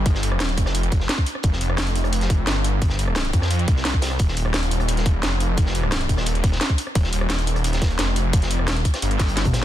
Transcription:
Already playing: detuned saw bass G1
0.06 kick, closed hi-hat
0.15 snare
0.23 closed hi-hat
0.32 cross-stick
0.40 snare, closed hi-hat
0.49 closed hi-hat
0.57 detuned saw bass F1, kick, closed hi-hat
0.66 cross-stick, snare
0.75 closed hi-hat
0.83 closed hi-hat
0.92 kick, closed hi-hat
1.00 snare
1.09 snare, closed hi-hat
1.18 kick, cross-stick
1.26 closed hi-hat
1.35 cross-stick
1.43 detuned saw bass F1, kick, closed hi-hat
1.53 snare
1.61 detuned saw bass F1, closed hi-hat
1.70 cross-stick
1.78 snare, closed hi-hat
1.87 closed hi-hat
1.95 closed hi-hat
2.04 cross-stick, closed hi-hat
2.13 closed hi-hat
2.21 snare, closed hi-hat
2.30 kick, closed hi-hat
2.47 detuned saw bass G1, snare, closed hi-hat
2.56 cross-stick
2.64 closed hi-hat
2.82 kick, closed hi-hat
2.89 snare
2.99 closed hi-hat
3.08 cross-stick
3.16 snare, closed hi-hat
3.25 closed hi-hat
3.33 detuned saw bass F2, kick, closed hi-hat
3.42 cross-stick, snare
3.51 closed hi-hat
3.59 closed hi-hat
3.68 detuned saw bass C2, kick, closed hi-hat
3.77 snare
3.85 snare, closed hi-hat
3.94 kick, cross-stick
4.02 snare, closed hi-hat
4.11 cross-stick
4.19 detuned saw bass D#1, kick, closed hi-hat
4.28 snare
4.37 detuned saw bass D#1, closed hi-hat
4.45 cross-stick
4.54 snare, closed hi-hat
4.63 closed hi-hat
4.71 closed hi-hat
4.80 cross-stick, closed hi-hat
4.88 closed hi-hat
4.97 snare, closed hi-hat
5.06 kick, closed hi-hat
5.23 detuned saw bass F1, snare, closed hi-hat
5.32 cross-stick
5.40 closed hi-hat
5.57 kick, closed hi-hat
5.66 snare
5.75 closed hi-hat
5.83 cross-stick
5.92 snare, closed hi-hat
6.01 closed hi-hat
6.09 detuned saw bass D#1, kick, closed hi-hat
6.17 cross-stick, snare
6.26 closed hi-hat
6.35 closed hi-hat
6.44 kick, closed hi-hat
6.52 snare
6.61 snare, closed hi-hat
6.70 kick, cross-stick
6.78 closed hi-hat
6.87 cross-stick
6.95 detuned saw bass D#1, kick, closed hi-hat
7.04 snare
7.13 detuned saw bass D#1, closed hi-hat
7.21 cross-stick
7.30 snare, closed hi-hat
7.39 closed hi-hat
7.47 closed hi-hat
7.56 cross-stick, closed hi-hat
7.64 closed hi-hat
7.73 snare, closed hi-hat
7.82 kick, snare, closed hi-hat
7.90 closed hi-hat
7.99 detuned saw bass F1, snare, closed hi-hat
8.07 cross-stick
8.16 closed hi-hat
8.33 kick, closed hi-hat
8.42 snare, closed hi-hat
8.51 closed hi-hat
8.59 detuned saw bass E1, cross-stick
8.68 snare, closed hi-hat
8.77 closed hi-hat
8.85 kick, closed hi-hat
8.94 cross-stick, snare, closed hi-hat
9.02 detuned saw bass G1, closed hi-hat
9.11 closed hi-hat
9.20 kick, snare, closed hi-hat
9.28 closed hi-hat
9.37 snare, closed hi-hat
9.45 kick, closed hi-hat, mid tom
9.53 snare, closed hi-hat

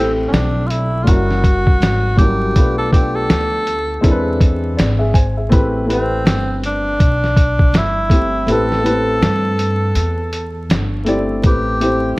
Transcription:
Already playing: upright bass A1, upright piano A3 C4 E4 G4, alto saxophone C4
0.00 upright piano A4
0.28 alto saxophone C#4
0.33 upright bass B1, alto saxophone D4, snare, closed hi-hat
0.67 alto saxophone E4 F4, closed hi-hat
1.03 upright bass F#1, upright piano G3 C#4 E4, alto saxophone F4 F#4, closed hi-hat
1.07 upright piano F#4 A#4, kick
1.31 snare
1.44 kick, closed hi-hat
1.67 kick
1.80 upright bass G#1, snare, closed hi-hat
2.17 upright piano F#3 G3 C#4 E4, alto saxophone G4, kick, closed hi-hat
2.21 upright piano A#4
2.54 upright bass B1, upright piano A3 B3 D4 F4 B4, kick, closed hi-hat
2.78 alto saxophone A4
2.90 upright piano A3 B3 D4 F4, alto saxophone G4, kick, closed hi-hat
2.95 upright piano G4
3.15 alto saxophone A4
3.30 upright bass D2, snare, closed hi-hat
3.67 closed hi-hat
4.01 upright bass E2, upright piano G#3 C4 D4 E4 A#4, kick, closed hi-hat
4.11 upright piano B4
4.41 kick, closed hi-hat
4.77 upright bass G#1, upright piano D5, snare, closed hi-hat
4.99 upright piano G#4 E5
5.14 upright piano C5 G#5, kick, closed hi-hat
5.37 upright piano G#4 E5
5.49 upright bass A1, upright piano A3 C4 E4 G4 B4, kick, closed hi-hat
5.85 upright piano A3 C4 E4 G4 B4
5.90 alto saxophone C4, closed hi-hat
6.25 upright bass G1, snare, closed hi-hat
6.63 alto saxophone D4, closed hi-hat
7.00 upright bass B1, kick, closed hi-hat
7.24 snare
7.37 kick, closed hi-hat
7.59 kick
7.73 upright bass G1, snare, closed hi-hat
7.77 alto saxophone E4
8.09 upright piano A3 C4 E4 G4 A4, kick, closed hi-hat
8.46 upright bass A1, upright piano A3 C4 E4 G4 B4, closed hi-hat
8.52 alto saxophone A4
8.72 snare
8.82 upright piano A3 B3 E4 G4 B4
8.86 upright piano C4, closed hi-hat
9.22 upright bass G2, snare, closed hi-hat
9.59 closed hi-hat
9.95 upright bass E2, closed hi-hat
10.33 closed hi-hat
10.70 upright bass G1, snare, closed hi-hat
11.05 upright piano A3 C4 E4 G4 D5, closed hi-hat
11.42 upright bass A1, upright piano A3 C4 E4 G4, kick, closed hi-hat
11.46 alto saxophone G4, upright piano B4
11.80 upright piano A3 C4 E4 G4 C5, closed hi-hat

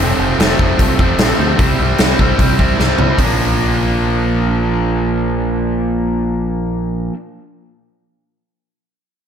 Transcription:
0.00 picked electric bass F1, overdriven electric guitar F2 C3 F3 A3 C4
0.19 picked electric bass F1, overdriven electric guitar A3 C4
0.23 overdriven electric guitar F3
0.39 picked electric bass F1, overdriven electric guitar C3 F3 A3 C4, snare, open hi-hat
0.59 picked electric bass F1, overdriven electric guitar F2 C3 F3 A3 C4, kick
0.79 picked electric bass C2, overdriven electric guitar C3 F3 A3 C4, kick, open hi-hat
0.99 picked electric bass F1, overdriven electric guitar F3 A3 C4, kick
1.18 picked electric bass A#1, overdriven electric guitar F2 C3 F3 A3 C4, snare, open hi-hat
1.38 picked electric bass D2, overdriven electric guitar F3 A3 C4
1.57 picked electric bass C2, overdriven electric guitar C3 G3 C4 E4, kick, open hi-hat
1.78 picked electric bass C2, overdriven electric guitar G3 C4 E4
1.98 picked electric bass C2, overdriven electric guitar C3 G3 C4, snare, open hi-hat
2.03 overdriven electric guitar E4
2.19 picked electric bass C2, overdriven electric guitar C3 G3 C4 E4, kick
2.39 picked electric bass C2, overdriven electric guitar C3 G3 C4 E4, kick, open hi-hat
2.59 picked electric bass C2, overdriven electric guitar G3 C4 E4, kick
2.78 picked electric bass C2, overdriven electric guitar C3 G3 C4 E4, snare
2.98 picked electric bass C2, overdriven electric guitar G3 C4 E4, floor tom
3.18 picked electric bass A#1, overdriven electric guitar A#2 F3 A#3 D4, kick, floor tom, open hi-hat

